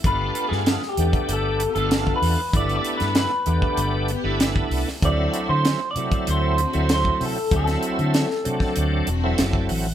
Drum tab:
HH |x-x-x-xxx-xxx-o-|xxxxx-x-x-x-x-o-|x-x-x-xxx-xxx-o-|xxxxx-x-x-x-x-o-|
SD |---ooo------o---|---oo-------o--o|----o-------o---|-o--oo-o----o---|
BD |o------o-----o--|o------o-----o--|o------o-----o--|o------o-----o--|